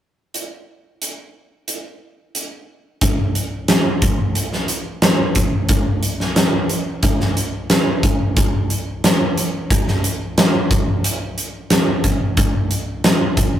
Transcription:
0.34 closed hi-hat
1.02 closed hi-hat
1.68 closed hi-hat
2.35 closed hi-hat
3.01 kick, closed hi-hat
3.35 closed hi-hat
3.68 snare, closed hi-hat
4.02 kick, closed hi-hat
4.35 closed hi-hat
4.53 snare
4.68 closed hi-hat
5.02 snare, closed hi-hat
5.35 kick, closed hi-hat
5.69 kick, closed hi-hat
6.03 closed hi-hat
6.20 snare
6.36 snare, closed hi-hat
6.69 closed hi-hat
7.03 kick, closed hi-hat
7.20 snare
7.37 closed hi-hat
7.70 snare, closed hi-hat
8.03 kick, closed hi-hat
8.37 kick, closed hi-hat
8.70 closed hi-hat
9.04 snare, closed hi-hat
9.38 closed hi-hat
9.70 kick, closed hi-hat
9.88 snare
10.04 closed hi-hat
10.38 snare, closed hi-hat
10.71 kick, closed hi-hat
11.04 closed hi-hat
11.38 closed hi-hat
11.70 snare, closed hi-hat
12.04 kick, closed hi-hat
12.37 kick, closed hi-hat
12.71 closed hi-hat
13.04 snare, closed hi-hat
13.37 kick, closed hi-hat

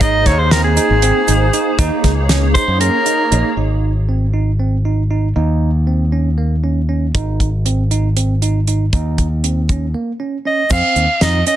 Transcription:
0.00 G#1 A#3 D#4 G#4 C5 D#5, kick, closed hi-hat, shaker
0.26 D#2 C#5, kick, snare, closed hi-hat
0.39 C5
0.51 C4 A#4, snare, closed hi-hat, shaker
0.64 G#4
0.77 D#4, closed hi-hat, shaker
0.90 G#1
1.02 C4, closed hi-hat, shaker
1.28 G#1 D#4, closed hi-hat, shaker
1.53 D#4, closed hi-hat, shaker
1.77 D#2 A#3 D#4 G#4 C#5, kick, closed hi-hat, shaker
2.04 C#2, kick, snare, closed hi-hat, shaker
2.29 C#4, snare, closed hi-hat
2.54 D#4 C5, kick, closed hi-hat, shaker
2.68 F#2
2.80 C#4 A#4, closed hi-hat, shaker
3.06 D#4, closed hi-hat, shaker
3.32 A#1 D#4, closed hi-hat
3.57 G#1 D#4
4.09 C4
4.34 D#4
4.59 C4
4.85 D#4
5.11 D#4
5.36 D#2 D#4
5.87 C4
6.12 C#4
6.38 A#3
6.64 C#4
6.89 C#4
7.14 G#1 D#4, kick, closed hi-hat
7.40 kick, closed hi-hat
7.65 C4, closed hi-hat
7.91 D#4, closed hi-hat
8.17 C4, closed hi-hat
8.42 D#4, closed hi-hat
8.67 D#4, closed hi-hat
8.93 D#2 D#4, kick, closed hi-hat
9.18 kick, closed hi-hat
9.44 C4, closed hi-hat
9.69 C#4, kick, closed hi-hat
9.94 A#3
10.20 C#4
10.45 C#4 D#5
10.70 F2 C4 F5, kick, crash, shaker
10.96 D#2, closed hi-hat
11.21 F2 D#4 D#5, snare, closed hi-hat
11.47 C#4 D#5, closed hi-hat, shaker

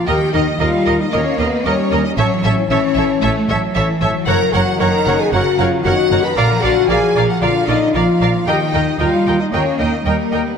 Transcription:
Already playing: A#3 A#4 F5 A#5
0.07 D#2 D#3 G4 A#4 D#5 G5 A#5
0.20 A#3
0.33 D#2 D#4 A#4 D#5 A#5
0.47 A#4
0.59 D#2 G3 D#4 F4 A#4 D#5 F5 A#5
0.74 D#5
0.85 D#2 A#4 D#5 A#5
1.00 D#4 D#5
1.12 D#2 A#3 C#4 A#4 C#5 D#5 A#5
1.27 D#5
1.38 D#2 B3 A#4 B4 D#5 A#5
1.53 D#5
1.64 D#2 G3 C#4 A#4 C#5 D#5 A#5
1.79 D#4
1.91 D#2 A#3 A#4 D#5 A#5
2.04 D#4 D#5
2.16 A1 A2 F#3 C#4 A4 C#5 E5 A5
2.32 E3
2.43 A1 C#4 A4 C#5 E5 A5
2.58 E4
2.70 A1 E3 C#4 A4 C#5 E5 A5
2.83 C#5
2.95 A1 A4 C#5 E5 A5
3.09 A5
3.21 A1 A3 A4 C#5 E5 A5
3.36 A5
3.48 A1 F#3 A4 C#5 E5 A5
3.62 C#5
3.75 A1 E3 A4 C#5 E5 A5
3.89 E4
4.01 A1 F#3 C#4 A4 C#5 E5 A5
4.14 E3
4.26 F#1 F#2 A#4 C#5 F#5 A#5
4.30 A#5
4.41 C#3
4.53 F#1 C#4 F#4 A#4 C#5 F#5 A#5
4.67 F#4
4.80 F#1 D#3 A#4 C#5 F#5 A#5
4.93 C#5
5.06 F#1 A#4 C#5 F#5 A#5
5.20 G#4 G#5 A#5
5.32 F#1 C#3 F#4 A#4 C#5 F#5 A#5
5.46 A#5
5.57 F#1 F4 A#4 C#5 F5 F#5 A#5
5.72 C#5
5.84 F#1 D#3 F#4 A#4 C#5 F#5 A#5
5.99 F#4
6.10 F#1 C#4 A#4 C#5 F#5 A#5
6.24 C#3 B4 B5
6.35 A#1 A#2 D3 A#4 D5 F5 A#5
6.50 F3
6.62 A#1 D4 F#4 A#4 D5 F5 F#5 A#5
6.76 F4
6.88 A#1 F3 G#4 A#4 D5 F5 G#5 A#5
7.02 D5
7.15 A#1 A#4 D5 F5 A#5
7.28 F#4 F#5 A#5
7.42 A#1 D3 F4 A#4 D5 F5 A#5
7.55 A#5
7.68 A#1 D#4 A#4 D5 D#5 F5 A#5
7.82 D5
7.94 A#1 F3 F4 A#4 D5 F5 A#5
8.08 F4
8.21 A#1 D4 A#4 D5 F5 A#5
8.34 F3
8.46 D#2 D#3 G4 A#4 D#5 G5 A#5
8.61 A#3
8.72 D#2 D#4 A#4 D#5 G5 A#5
8.87 G4
8.99 D#2 G3 F4 A#4 D#5 F5 G5 A#5
9.13 D#5
9.26 D#2 A#4 D#5 G5 A#5
9.39 D#4 D#5 A#5
9.52 D#2 A#3 C#4 A#4 C#5 D#5 G5 A#5
9.79 D#2 D#4 A#4 D#5 G5 A#5
9.93 D#5
10.05 D#2 G3 A#3 A#4 D#5 G5 A#5
10.20 G4
10.31 D#2 D#4 A#4 D#5 G5
10.35 A#5
10.47 A#3 B3 B4

